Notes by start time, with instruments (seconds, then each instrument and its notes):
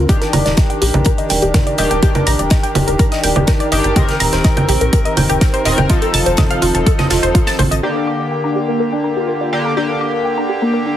Already playing: analog synth pad A#4
0.09 analog synth pad D#3 D4 G4, analog polysynth D#3 D4 G4, synth arpeggio sound G4, kick, closed hi-hat
0.21 synth arpeggio sound A#4, snare, closed hi-hat
0.33 analog synth bass D#1, synth arpeggio sound A#5, closed hi-hat, open hi-hat, low conga
0.46 analog synth bass D#1, synth arpeggio sound D5, snare, closed hi-hat
0.57 synth arpeggio sound D#5, kick, snare, closed hi-hat
0.70 synth arpeggio sound G5, closed hi-hat
0.82 analog synth bass A#1, synth arpeggio sound G4, closed hi-hat, open hi-hat
0.94 analog synth bass A#1, synth arpeggio sound A#4, closed hi-hat, low conga
1.05 synth arpeggio sound A#4, kick, closed hi-hat
1.18 synth arpeggio sound D#5, closed hi-hat
1.30 analog synth bass D#1, synth arpeggio sound G5, closed hi-hat, open hi-hat
1.42 analog synth bass D#1, synth arpeggio sound G4, closed hi-hat
1.54 synth arpeggio sound A#4, kick, snare, closed hi-hat, low conga
1.67 synth arpeggio sound D5, closed hi-hat
1.78 analog synth bass D#1, analog polysynth D#3 D4 G4, synth arpeggio sound D#5, closed hi-hat, open hi-hat
1.91 analog synth bass D#1, synth arpeggio sound G5, closed hi-hat
2.03 analog polysynth D#3 D4 G4, synth arpeggio sound G4, kick, closed hi-hat
2.15 synth arpeggio sound A#4, closed hi-hat, low conga
2.27 analog synth bass A#1, synth arpeggio sound A#5, closed hi-hat, open hi-hat
2.39 analog synth bass D#1, synth arpeggio sound D5, closed hi-hat
2.50 synth arpeggio sound D#5, kick, snare, closed hi-hat
2.63 synth arpeggio sound G5, closed hi-hat
2.75 analog synth bass D#1, synth arpeggio sound G4, closed hi-hat, open hi-hat, low conga
2.87 analog synth bass D#1, synth arpeggio sound A#4, closed hi-hat
2.99 synth arpeggio sound A#4, kick, closed hi-hat
3.12 synth arpeggio sound D#5, snare, closed hi-hat
3.24 analog synth bass D#1, synth arpeggio sound G5, closed hi-hat, open hi-hat
3.36 analog synth bass D#1, synth arpeggio sound G4, closed hi-hat, low conga
3.47 synth arpeggio sound A#4, kick, snare, closed hi-hat
3.60 synth arpeggio sound D5, closed hi-hat
3.72 analog synth bass G1, analog polysynth D#3 D4 G4, synth arpeggio sound D#5, closed hi-hat, open hi-hat
3.84 analog synth bass G1, synth arpeggio sound G5, closed hi-hat
3.96 analog polysynth D#3 C4 A#4, analog synth pad C4, synth arpeggio sound G4, kick, closed hi-hat, low conga
4.08 synth arpeggio sound A#4, snare, closed hi-hat
4.20 analog synth bass D#1, synth arpeggio sound A#5, closed hi-hat, open hi-hat
4.33 analog synth bass D#1, synth arpeggio sound C5, snare, closed hi-hat
4.44 synth arpeggio sound D#5, kick, snare, closed hi-hat
4.57 synth arpeggio sound G5, closed hi-hat, low conga
4.69 analog synth bass A#1, synth arpeggio sound G4, closed hi-hat, open hi-hat
4.81 analog synth bass A#1, synth arpeggio sound A#4, closed hi-hat
4.93 synth arpeggio sound A#4, kick, closed hi-hat
5.05 synth arpeggio sound D#5, closed hi-hat
5.17 analog synth bass D#1, synth arpeggio sound G5, closed hi-hat, open hi-hat, low conga
5.29 analog synth bass D#1, synth arpeggio sound G4, closed hi-hat
5.41 synth arpeggio sound A#4, kick, snare, closed hi-hat
5.54 synth arpeggio sound C5, closed hi-hat
5.65 analog synth bass D#1, analog polysynth D#3 C4 A#4, synth arpeggio sound D#5, closed hi-hat, open hi-hat
5.78 analog synth bass D#1, synth arpeggio sound G5, closed hi-hat, low conga
5.89 analog polysynth F3 D#4 A4, analog synth pad F4 A4, synth arpeggio sound F4, kick, closed hi-hat
6.02 synth arpeggio sound A4, closed hi-hat
6.14 analog synth bass F1, synth arpeggio sound A5, closed hi-hat, open hi-hat
6.26 analog synth bass F1, synth arpeggio sound C5, closed hi-hat
6.37 synth arpeggio sound D#5, kick, snare, closed hi-hat, low conga
6.50 synth arpeggio sound F5, closed hi-hat
6.62 analog synth bass F1, synth arpeggio sound F4, closed hi-hat, open hi-hat
6.75 analog synth bass F1, synth arpeggio sound A4, closed hi-hat
6.86 synth arpeggio sound A4, kick, closed hi-hat
6.99 synth arpeggio sound D#5, snare, closed hi-hat, low conga
7.10 analog synth bass F1, synth arpeggio sound F4, snare, closed hi-hat, open hi-hat
7.23 analog synth bass F1, synth arpeggio sound C5, closed hi-hat
7.35 synth arpeggio sound F4, kick, closed hi-hat
7.47 synth arpeggio sound A5, snare, closed hi-hat
7.59 analog synth bass A1, synth arpeggio sound C5, open hi-hat, low conga
7.71 analog synth bass A1, synth arpeggio sound D#5, closed hi-hat
7.83 analog synth pad D3 A#3 G4 A#4, analog polysynth D3 A#3 G4, supersaw synth D4, synth arpeggio sound G4
7.95 synth arpeggio sound A#4
8.07 synth arpeggio sound D6
8.20 synth arpeggio sound D5
8.32 synth arpeggio sound G5
8.44 supersaw synth D4, synth arpeggio sound A#5
8.56 synth arpeggio sound G4
8.68 supersaw synth A#3, synth arpeggio sound A#4
8.80 synth arpeggio sound A#4
8.92 supersaw synth D4, synth arpeggio sound G5
9.04 synth arpeggio sound A#5
9.17 supersaw synth F4, synth arpeggio sound G4
9.28 synth arpeggio sound A#4
9.41 synth arpeggio sound D5
9.53 analog polysynth D3 A#3 G4, synth arpeggio sound G5
9.65 synth arpeggio sound A#5
9.77 analog polysynth D3 A#3 G4, supersaw synth D4, synth arpeggio sound G4, analog synth pad A4
9.89 synth arpeggio sound A#4
10.01 synth arpeggio sound D6
10.14 synth arpeggio sound D5
10.25 synth arpeggio sound G5
10.38 supersaw synth D4, synth arpeggio sound A#5
10.49 synth arpeggio sound G4
10.62 supersaw synth A#3, synth arpeggio sound A#4
10.74 synth arpeggio sound A#4
10.86 supersaw synth D4, synth arpeggio sound G5